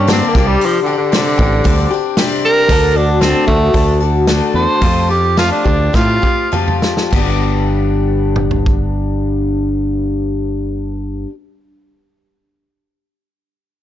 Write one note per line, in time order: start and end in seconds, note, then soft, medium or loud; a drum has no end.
0.00 0.20 G2 medium
0.07 0.34 G2 medium
0.07 0.34 D3 medium
0.07 0.34 G3 medium
0.07 0.35 A#3 medium
0.07 0.34 D4 medium
0.07 0.34 G4 medium
0.07 snare loud
0.07 open hi-hat soft
0.12 0.31 C4 medium
0.29 0.48 A#3 medium
0.35 0.56 C2 medium
0.35 0.88 C3 soft
0.35 0.88 G3 medium
0.35 0.87 C4 medium
0.35 0.87 D4 medium
0.35 0.85 G4 medium
0.35 kick medium
0.35 snare soft
0.47 0.67 G3 medium
0.61 open hi-hat soft
0.65 0.80 F3 medium
0.82 0.97 D3 medium
0.86 1.12 C4 soft
0.86 1.13 D4 soft
0.86 1.13 G4 medium
0.98 1.98 D3 medium
1.12 1.38 C3 medium
1.12 1.39 G3 medium
1.12 1.39 C4 medium
1.12 1.38 D4 medium
1.12 1.36 G4 medium
1.12 snare medium
1.12 open hi-hat soft
1.38 1.60 A1 medium
1.38 1.64 C4 soft
1.38 1.65 D4 soft
1.38 1.64 G4 medium
1.38 kick medium
1.64 1.86 D2 medium
1.64 1.90 G3 medium
1.64 1.91 C4 medium
1.64 1.91 D4 medium
1.64 1.89 G4 medium
1.64 kick medium
1.64 open hi-hat soft
1.90 2.17 C4 soft
1.90 2.17 D4 soft
1.90 2.17 G4 medium
2.17 2.69 C3 medium
2.17 2.70 G3 medium
2.17 2.70 C4 medium
2.17 2.70 D4 medium
2.17 2.70 G4 medium
2.17 snare loud
2.17 open hi-hat soft
2.45 2.98 A#4 loud
2.68 3.33 D2 medium
2.68 2.95 D3 medium
2.68 2.96 A3 medium
2.68 2.96 D4 medium
2.68 2.96 F#4 medium
2.68 2.94 A4 medium
2.68 kick loud
2.68 open hi-hat medium
2.95 3.23 D4 medium
2.95 3.21 D4 soft
2.95 3.21 F#4 soft
2.95 3.21 A4 soft
3.21 3.47 D3 medium
3.21 3.48 A3 medium
3.21 3.47 C4 medium
3.21 3.48 D4 medium
3.21 3.48 F#4 medium
3.21 3.46 A4 medium
3.21 snare medium
3.21 open hi-hat soft
3.47 3.69 D2 medium
3.47 3.99 A3 medium
3.47 3.74 D4 soft
3.47 3.75 F#4 soft
3.47 3.74 A4 medium
3.47 kick medium
3.73 4.40 D2 medium
3.73 4.00 A3 medium
3.73 4.01 D4 medium
3.73 4.01 F#4 soft
3.73 3.99 A4 medium
3.73 kick medium
3.73 open hi-hat soft
4.00 4.27 D4 soft
4.00 4.28 F#4 soft
4.00 4.27 A4 soft
4.27 4.81 D3 medium
4.27 4.81 A3 medium
4.27 4.82 D4 medium
4.27 4.83 F#4 medium
4.27 4.83 A4 medium
4.27 snare medium
4.27 open hi-hat soft
4.54 4.65 E2 medium
4.54 5.08 C5 medium
4.81 5.50 F2 medium
4.81 5.09 F3 medium
4.81 5.09 A3 medium
4.81 5.10 C4 medium
4.81 5.09 F4 medium
4.81 5.07 G4 medium
4.81 kick medium
4.81 open hi-hat soft
5.09 5.37 C4 soft
5.09 5.38 F4 soft
5.09 5.37 G4 soft
5.09 5.37 G4 medium
5.37 5.65 F3 medium
5.37 5.66 A3 medium
5.37 5.66 C4 medium
5.37 5.51 F4 medium
5.37 5.65 F4 medium
5.37 5.63 G4 medium
5.37 snare medium
5.37 open hi-hat soft
5.52 5.97 D4 medium
5.64 5.89 D2 medium
5.64 5.93 C4 soft
5.64 5.94 F4 soft
5.64 5.94 G4 soft
5.64 kick medium
5.93 6.18 A2 medium
5.93 6.23 A3 soft
5.93 6.23 C4 soft
5.93 6.51 F4 medium
5.93 6.22 F4 medium
5.93 6.21 G4 medium
5.93 kick medium
5.93 snare soft
6.22 6.52 C4 soft
6.22 6.52 F4 soft
6.22 6.52 G4 soft
6.22 kick medium
6.52 7.12 F3 medium
6.52 7.13 A3 medium
6.52 7.13 C4 medium
6.52 7.13 F4 medium
6.52 7.14 G4 medium
6.52 mid tom medium
6.68 mid tom medium
6.82 snare medium
6.97 snare medium
7.11 11.24 G1 medium
7.11 11.27 G2 medium
7.11 11.28 D3 medium
7.11 11.30 G3 medium
7.11 kick medium
7.11 crash medium
7.15 11.31 B3 medium
7.15 11.32 D4 medium
7.15 11.33 G4 medium
8.36 mid tom soft
8.51 floor tom medium
8.66 kick medium